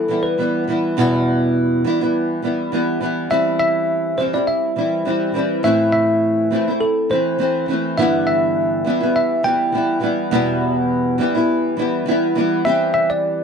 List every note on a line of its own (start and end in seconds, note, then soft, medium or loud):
0.00 0.25 A4 medium
0.08 0.37 E3 medium
0.08 0.37 G3 medium
0.08 0.38 B3 soft
0.08 0.39 E4 soft
0.23 0.63 B4 medium
0.38 0.66 E3 medium
0.38 0.67 G3 medium
0.38 0.68 B3 medium
0.38 0.68 E4 medium
0.68 0.96 E3 medium
0.68 0.96 G3 medium
0.68 0.97 B3 medium
0.68 0.97 E4 medium
0.97 1.84 E2 medium
0.97 1.85 B2 medium
0.97 1.84 E3 medium
0.97 1.85 G3 medium
0.97 1.85 B3 medium
0.97 1.87 E4 medium
1.84 2.00 E3 medium
1.84 2.01 G3 medium
1.84 2.01 B3 medium
1.84 2.00 E4 medium
2.01 2.41 E3 soft
2.01 2.42 G3 soft
2.01 2.43 B3 soft
2.01 2.43 E4 medium
2.42 2.71 E3 medium
2.42 2.72 G3 medium
2.42 2.72 B3 medium
2.42 2.73 E4 medium
2.72 2.99 E3 medium
2.72 3.00 G3 medium
2.72 3.01 B3 medium
2.72 3.02 E4 medium
3.01 3.29 E3 medium
3.01 3.29 G3 medium
3.01 3.31 B3 medium
3.01 3.31 E4 medium
3.30 4.17 E3 medium
3.30 4.17 G3 medium
3.30 4.19 C4 medium
3.30 4.20 E4 medium
3.30 3.58 E5 loud
3.59 4.20 E5 loud
4.17 4.34 E3 medium
4.17 4.34 G3 medium
4.17 4.34 C4 medium
4.17 4.32 E4 medium
4.17 4.25 C5 medium
4.33 4.75 G3 soft
4.33 4.76 C4 soft
4.33 4.76 E4 medium
4.33 4.46 D5 medium
4.47 5.31 E5 medium
4.76 5.04 E3 soft
4.76 5.04 G3 soft
4.76 5.05 C4 medium
4.76 5.06 E4 medium
5.05 5.33 E3 medium
5.05 5.34 G3 medium
5.05 5.34 C4 medium
5.05 5.35 E4 medium
5.34 5.62 E3 medium
5.34 5.64 G3 medium
5.34 5.63 C4 medium
5.34 5.64 E4 medium
5.63 6.51 A2 medium
5.63 6.50 E3 medium
5.63 6.51 A3 medium
5.63 6.51 C4 medium
5.63 6.53 E4 medium
5.63 5.91 E5 loud
5.92 6.83 E5 loud
6.51 6.67 E3 medium
6.51 6.68 A3 medium
6.51 6.68 C4 medium
6.51 6.66 E4 medium
6.68 7.09 A3 soft
6.68 7.10 C4 soft
6.68 7.10 E4 medium
6.81 7.11 A4 medium
7.09 7.37 E3 soft
7.09 7.38 A3 medium
7.09 7.39 C4 medium
7.09 7.40 E4 medium
7.09 7.65 C5 medium
7.38 7.67 E3 medium
7.38 7.68 A3 medium
7.38 7.68 C4 medium
7.38 7.69 E4 medium
7.68 7.97 E3 medium
7.68 7.98 A3 medium
7.68 7.98 C4 medium
7.68 7.98 E4 medium
7.97 8.85 G2 medium
7.97 8.86 D3 medium
7.97 8.84 E3 medium
7.97 8.85 G3 medium
7.97 8.86 B3 medium
7.97 8.87 E4 medium
7.97 8.26 E5 medium
8.27 9.15 E5 medium
8.85 9.01 E3 medium
8.85 9.01 G3 medium
8.85 9.01 B3 medium
8.85 8.99 E4 medium
9.00 9.42 E3 soft
9.00 9.43 G3 soft
9.00 9.44 B3 soft
9.00 9.44 E4 medium
9.16 9.43 E5 medium
9.43 9.71 E3 medium
9.43 9.72 G3 medium
9.43 9.73 B3 soft
9.43 9.74 E4 medium
9.43 9.99 G5 medium
9.72 9.99 E3 medium
9.72 10.01 G3 medium
9.72 10.01 B3 medium
9.72 10.02 E4 medium
10.01 10.31 E3 medium
10.01 10.31 G3 medium
10.01 10.31 B3 medium
10.01 10.31 E4 medium
10.31 11.19 E2 medium
10.31 11.20 B2 medium
10.31 11.18 E3 medium
10.31 11.18 G3 medium
10.31 11.19 B3 medium
10.31 11.20 E4 medium
11.18 11.35 E3 medium
11.18 11.35 G3 medium
11.18 11.35 B3 medium
11.18 11.33 E4 medium
11.35 11.75 E3 soft
11.35 11.77 G3 soft
11.35 11.77 B3 medium
11.35 11.78 E4 medium
11.77 12.05 E3 medium
11.77 12.06 G3 medium
11.77 12.07 B3 medium
11.77 12.07 E4 medium
12.06 12.34 E3 medium
12.06 12.35 G3 medium
12.06 12.36 B3 medium
12.06 12.37 E4 medium
12.35 12.64 E3 medium
12.35 12.64 G3 medium
12.35 12.66 B3 medium
12.35 12.66 E4 medium
12.65 13.44 E3 medium
12.65 13.44 G3 medium
12.65 13.44 C4 medium
12.65 13.44 G4 medium
12.65 12.93 E5 loud
12.94 13.10 E5 loud
13.10 13.44 D5 medium